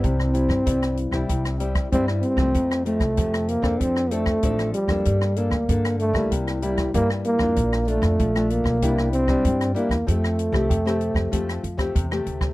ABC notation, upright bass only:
X:1
M:4/4
L:1/16
Q:1/4=96
K:F
V:1 name="Upright bass" clef=bass
C,,3 G,, C,,3 C,, C,,4 G,,2 z C,, | F,,3 C,, F,,3 F,, F,,4 A,,,2 z F,, | G,,3 D,, G,,3 _D,, C,,4 G,,2 z F,, | B,,,3 F,, B,,,3 =B,,, C,,4 G,,2 z E,, |
F,,3 C,, F,,3 F,, F,,2 F,,2 E,,2 D,,2 |]